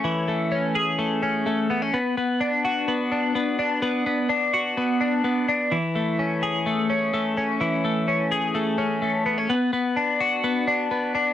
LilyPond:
\new Staff \with { instrumentName = "Clean electric guitar" } { \time 4/4 \key a \major \tempo 4 = 127 <e a cis' gis'>8 a8 cis'8 gis'8 a8 cis'8 a8 b16 cis'16 | b8 b8 d'8 fis'8 b8 d'8 b8 d'8 | b8 b8 d'8 fis'8 b8 d'8 b8 d'8 | e8 a8 cis'8 gis'8 a8 cis'8 a8 cis'8 |
e8 a8 cis'8 gis'8 a8 cis'8 a8 b16 cis'16 | b8 b8 d'8 fis'8 b8 d'8 b8 d'8 | }